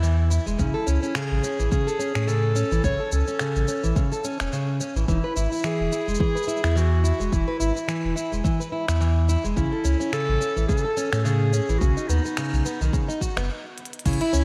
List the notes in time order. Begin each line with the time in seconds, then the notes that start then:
Already playing: E2
0.03 E3, shaker
0.30 E4, shaker
0.46 E1 G#3, shaker
0.59 A1 C#3 E4, kick, shaker
0.74 A4
0.87 C#2 C#4, shaker
1.03 C#4, shaker
1.15 C#3 G#4, finger snap, shaker
1.31 A1
1.43 C#4, shaker
1.59 A1 E3, shaker
1.71 C#3 G#4, kick, shaker
1.87 A4, shaker
1.99 C#4, shaker
2.15 A2 C#4, finger snap, shaker
2.27 C#3 A4, shaker
2.56 C#4, shaker
2.71 A1 E3, shaker
2.84 A1 C#3 C#5, kick, shaker
3.00 A4
3.12 C#2 C#4 A4, shaker
3.28 C#4, shaker
3.39 C#3, finger snap, shaker
3.56 A1, shaker
3.68 C#4, shaker
3.84 A1 E3, shaker
3.96 C#3, kick, shaker
4.12 A4, shaker
4.25 C#4, shaker
4.40 E1 C#4, finger snap, shaker
4.53 C#3, shaker
4.80 C#4, shaker
4.95 A1 E3, shaker
5.08 E1 E3 E4, kick, shaker
5.24 B4
5.36 G#1 E4, shaker
5.52 E4, shaker
5.55 shaker
5.58 shaker
5.62 E3, finger snap, shaker
5.65 G#4, shaker
5.69 shaker
5.77 E1, shaker
5.92 E4, shaker
6.07 E1 G#3, shaker
6.15 shaker
6.20 E3 G#4, kick
6.35 B4, shaker
6.43 shaker
6.47 E4, shaker
6.57 shaker
6.64 E2 E4, finger snap, shaker
6.76 E3 F#4, shaker
7.04 E4, shaker
7.20 E1 G#3, shaker
7.32 E1 E3 E4, kick, shaker
7.48 B4
7.60 G#1 E4, shaker
7.76 E4, shaker
7.88 E3, finger snap, shaker
8.04 E1
8.16 E4, shaker
8.32 E1 G#3, shaker
8.44 E3, kick, shaker
8.60 B4, shaker
8.72 E4
8.88 E2 E4, finger snap, shaker
9.01 E3, shaker
9.29 E4, shaker
9.44 E1 G#3, shaker
9.56 A1 C#3 E4, kick, shaker
9.72 A4
9.84 C#2 C#4, shaker
10.00 C#4, shaker
10.12 C#3 A4, finger snap, shaker
10.29 A1
10.41 C#4, shaker
10.56 A1 E3, shaker
10.67 C#3 A4, kick, shaker
10.78 shaker
10.85 A4
10.97 C#4, shaker
11.12 A2 C#4, finger snap, shaker
11.24 C#3 G#4, shaker
11.53 C#4, shaker
11.69 A1 E3, shaker
11.78 B1 C#3 F#4, kick, shaker
11.97 D#4, shaker
12.08 D#2 B3 D#4, shaker
12.25 B3, shaker
12.37 C#3, finger snap, shaker
12.53 B1, shaker
12.66 B3, shaker
12.81 B1 D#3, shaker
12.93 C#3, kick, shaker
13.08 D#4, shaker
13.21 F#4, kick, shaker
13.37 F#1 B3, finger snap, shaker
13.78 closed hi-hat
13.85 closed hi-hat
13.93 closed hi-hat
13.99 closed hi-hat
14.05 A1 C#3 E4, kick, closed hi-hat, crash, shaker
14.13 closed hi-hat
14.21 E4, closed hi-hat
14.33 C#2 C#4, shaker